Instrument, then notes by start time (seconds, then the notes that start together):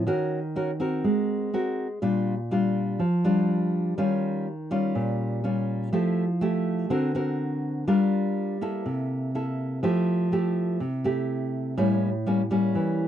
nylon-string guitar
0.07 D#3 C#4 F#4 A#4
0.56 C#4 F#4 A#4
0.80 C4 F#4 A#4
1.04 G#3
1.53 C4 F#4 A#4
2.02 A#2 G3 D4 F4
2.51 G3 D4 F4
2.99 F3
3.24 G3 D4 F4
3.98 D#3 G3 C#4 F4
4.71 G3 C#4 F4
4.95 A#2
5.44 G3 C#4 F4
5.92 F3 A3 E4 G4
6.41 A3 E4 G4
6.90 D3 C4 F#4 A#4
7.15 C4 F#4 A#4
7.87 G3 D4 F4 A#4
8.61 A#3 E4 A4
8.86 C3
9.35 A#3 E4 A4
9.83 F3 A3 E4 G4
10.32 A3 E4 G4
10.80 C3
11.04 A3 E4 G4
11.78 A2 G3 A#3 C#4
12.27 G3 A#3 C#4
12.51 G3 A#3 C#4
12.75 E3